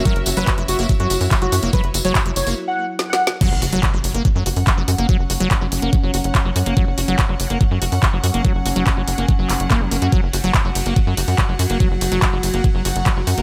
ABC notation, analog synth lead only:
X:1
M:4/4
L:1/16
Q:1/4=143
K:none
V:1 name="Analog synth lead"
^A z2 B z2 ^F z2 F2 z2 F z2 | B z2 ^c z2 c z2 ^f2 z2 f z2 | z16 | z16 |
z16 | z16 | z16 | z16 |]